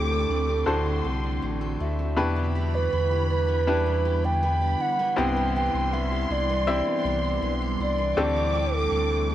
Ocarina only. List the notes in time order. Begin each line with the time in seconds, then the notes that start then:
Already playing: A4
1.80 E5
2.75 B4
3.30 B4
4.25 G5
4.81 F#5
5.19 G5
5.56 G5
5.93 E5
6.31 D5
7.82 D5
8.75 A4
9.31 A4